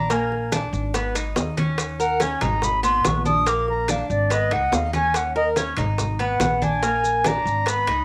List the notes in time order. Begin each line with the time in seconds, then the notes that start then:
Already playing: A#1 D4 A#5
0.10 A#3 G#5, high bongo, high conga, high timbale, maracas
0.32 high bongo, high conga
0.52 D4, high bongo, high conga, high timbale, low timbale, maracas
0.73 G#1, high conga, maracas
0.94 B3, high bongo, high conga, high timbale, maracas
1.15 D#4, high bongo, high conga, high timbale, maracas
1.36 D#2, high bongo, low bongo, high conga, low timbale, maracas
1.57 C#4, high bongo, high conga, high timbale, maracas
1.78 high bongo, high conga, high timbale, maracas
2.00 A#4 F#5, high conga, maracas
2.20 C#4 G#5, high bongo, high conga, high timbale, low timbale, maracas
2.41 G#1 D#4 A#5, high conga, low conga, high timbale, maracas
2.62 B5, high bongo, high conga, low conga, maracas
2.83 B3 C6, high conga, high timbale, maracas
3.05 A#1 C#6, high bongo, low bongo, high conga, high timbale, low timbale, maracas
3.25 D4 D#6, high conga, maracas
3.46 A#3 D6, high bongo, high conga, high timbale, maracas
3.68 A#5, high bongo, high conga
3.88 D4 F5, high bongo, high conga, high timbale, low timbale, maracas
4.10 G#1 D5, high conga, maracas
4.30 B3 D#5, high bongo, high conga, high timbale, maracas
4.51 C#2 D#4 F#5, high bongo, high conga, high timbale
4.72 D#2 F5, high bongo, low bongo, high conga, low timbale, maracas
4.93 C#4 G#5, high bongo, high conga, high timbale, maracas
5.14 F#5, high bongo, high conga, high timbale, maracas
5.36 A#4 D#5, high conga
5.56 C#4, high bongo, high conga, high timbale, low timbale, maracas
5.77 G#1 D#4, high conga, low conga, high timbale, maracas
5.98 high bongo, high conga, low conga, maracas
6.19 B3 F#5, high conga, high timbale
6.40 A#1, high bongo, low bongo, high conga, high timbale, low timbale, maracas
6.62 D4 G#5, high conga, maracas
6.83 A#3, high bongo, high conga, high timbale, maracas
7.04 high bongo, high conga, maracas
7.24 D4 A#5, high bongo, high conga, high timbale, low timbale, maracas
7.46 G#1, maracas
7.66 B3 B5, high bongo, high conga, high timbale, maracas
7.87 C#2 D#4, high bongo, high conga, high timbale